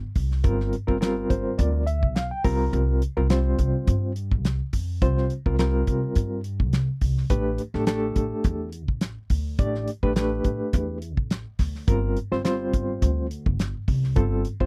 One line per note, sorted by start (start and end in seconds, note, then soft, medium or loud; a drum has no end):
0.15 0.43 C2 medium
0.15 kick medium
0.15 open hi-hat medium
0.31 snare soft
0.44 0.71 G1 medium
0.44 0.74 G3 medium
0.44 0.74 C4 medium
0.44 0.74 F4 medium
0.44 0.75 A#4 medium
0.44 kick loud
0.44 closed hi-hat medium
0.60 snare soft
0.73 closed hi-hat medium
0.87 1.28 G1 medium
0.87 0.97 G3 medium
0.87 0.97 C4 medium
0.87 0.97 F4 medium
0.87 0.97 A#4 medium
0.87 kick medium
1.01 1.82 G3 medium
1.01 1.82 C4 medium
1.01 1.82 F4 medium
1.01 1.82 A#4 medium
1.01 snare loud
1.01 closed hi-hat medium
1.30 1.45 G1 medium
1.30 1.57 C5 medium
1.30 kick medium
1.30 closed hi-hat medium
1.58 2.03 D2 loud
1.58 1.85 D5 medium
1.58 kick medium
1.58 closed hi-hat medium
1.87 2.13 E5 medium
1.87 closed hi-hat medium
2.03 2.30 B1 medium
2.03 kick medium
2.16 2.30 F5 medium
2.16 snare medium
2.16 closed hi-hat medium
2.31 2.43 G5 medium
2.44 2.71 C2 medium
2.44 3.02 G3 medium
2.44 3.02 C4 medium
2.44 3.02 F4 medium
2.44 3.02 A#4 medium
2.44 2.71 A#5 medium
2.44 kick medium
2.44 open hi-hat medium
2.73 3.00 C2 medium
2.73 closed hi-hat medium
3.02 closed hi-hat medium
3.17 3.56 C2 medium
3.17 3.26 G3 medium
3.17 3.27 C4 medium
3.17 3.26 F4 medium
3.17 3.26 A#4 medium
3.30 4.11 G3 medium
3.30 4.11 C4 medium
3.30 4.11 F4 medium
3.30 4.11 C5 medium
3.30 snare loud
3.30 closed hi-hat medium
3.59 3.73 C2 medium
3.59 kick medium
3.59 closed hi-hat medium
3.87 4.33 G2 loud
3.87 kick medium
3.87 closed hi-hat medium
4.16 closed hi-hat medium
4.31 4.59 C2 medium
4.31 kick medium
4.45 snare medium
4.45 closed hi-hat medium
4.73 5.00 F2 medium
4.73 kick medium
4.73 open hi-hat medium
5.02 5.29 C2 medium
5.02 5.32 G3 medium
5.02 5.32 C4 medium
5.02 5.32 F4 medium
5.02 5.32 C5 medium
5.02 kick loud
5.02 closed hi-hat medium
5.18 snare soft
5.30 closed hi-hat medium
5.46 5.85 C2 medium
5.46 5.55 G3 medium
5.46 5.55 C4 medium
5.46 5.55 F4 medium
5.46 5.55 A#4 medium
5.46 kick medium
5.59 6.40 G3 medium
5.59 6.40 C4 medium
5.59 6.40 F4 medium
5.59 6.40 A#4 medium
5.59 snare loud
5.59 closed hi-hat medium
5.87 6.02 C2 medium
5.87 kick medium
5.87 closed hi-hat soft
6.15 6.61 G2 medium
6.15 kick medium
6.15 closed hi-hat medium
6.44 closed hi-hat medium
6.60 6.87 C2 medium
6.60 kick medium
6.73 snare medium
6.73 closed hi-hat medium
7.01 7.29 C2 medium
7.01 kick medium
7.01 open hi-hat medium
7.17 snare soft
7.30 7.57 A1 medium
7.30 7.61 A3 medium
7.30 7.61 D4 medium
7.30 7.61 G4 medium
7.30 7.61 B4 medium
7.30 kick loud
7.30 closed hi-hat medium
7.58 closed hi-hat medium
7.74 8.14 A1 medium
7.74 7.84 A3 medium
7.74 7.84 D4 medium
7.74 7.84 G4 medium
7.74 7.84 A4 medium
7.74 snare soft
7.87 8.68 A3 medium
7.87 8.68 D4 medium
7.87 8.68 G4 medium
7.87 8.68 A4 medium
7.87 snare loud
7.87 closed hi-hat medium
8.16 8.31 A1 medium
8.16 kick medium
8.16 closed hi-hat medium
8.44 8.89 E2 medium
8.44 kick medium
8.44 closed hi-hat medium
8.72 closed hi-hat medium
8.88 9.16 A1 medium
8.88 kick medium
9.01 snare medium
9.01 closed hi-hat medium
9.30 9.57 D2 medium
9.30 kick medium
9.30 open hi-hat medium
9.59 9.86 A1 medium
9.59 9.89 A3 medium
9.59 9.89 D4 medium
9.59 9.89 G4 medium
9.59 9.89 D5 medium
9.59 kick loud
9.59 closed hi-hat medium
9.75 snare soft
9.88 closed hi-hat medium
10.03 10.42 A1 medium
10.03 10.12 A3 medium
10.03 10.12 D4 medium
10.03 10.12 G4 medium
10.03 10.12 B4 medium
10.03 kick medium
10.16 10.97 A3 medium
10.16 10.97 D4 medium
10.16 10.97 G4 medium
10.16 10.97 B4 medium
10.16 snare loud
10.16 closed hi-hat medium
10.44 10.59 A1 medium
10.44 kick medium
10.44 closed hi-hat medium
10.73 11.17 E2 loud
10.73 kick medium
10.73 closed hi-hat medium
11.02 closed hi-hat medium
11.17 11.44 A1 medium
11.17 kick medium
11.31 snare medium
11.31 closed hi-hat medium
11.59 11.86 D2 medium
11.59 kick medium
11.59 snare soft
11.59 open hi-hat medium
11.75 snare soft
11.87 12.15 G1 medium
11.87 12.18 G3 medium
11.87 12.18 C4 medium
11.87 12.18 F4 medium
11.87 12.18 A#4 medium
11.87 kick loud
11.87 closed hi-hat medium
12.17 closed hi-hat medium
12.32 12.71 G1 medium
12.32 12.41 G3 medium
12.32 12.41 C4 medium
12.32 12.41 F4 medium
12.32 12.41 C5 medium
12.32 snare soft
12.44 13.26 G3 medium
12.44 13.26 C4 medium
12.44 13.26 F4 medium
12.44 13.26 C5 medium
12.44 snare loud
12.44 closed hi-hat medium
12.73 12.88 G1 medium
12.73 kick medium
12.73 closed hi-hat medium
13.02 13.48 D2 loud
13.02 kick medium
13.02 closed hi-hat medium
13.31 closed hi-hat medium
13.46 13.73 G1 medium
13.46 kick medium
13.59 snare medium
13.59 closed hi-hat medium
13.88 14.15 C2 medium
13.88 kick medium
13.88 open hi-hat medium
14.04 snare soft
14.16 14.43 G1 medium
14.16 14.46 G3 medium
14.16 14.46 C4 medium
14.16 14.46 F4 medium
14.16 14.46 A4 medium
14.16 kick loud
14.16 closed hi-hat medium
14.45 closed hi-hat medium
14.60 14.66 G1 medium
14.60 14.66 G3 medium
14.60 14.66 C4 medium
14.60 14.66 F4 medium
14.60 14.66 C5 medium
14.60 kick medium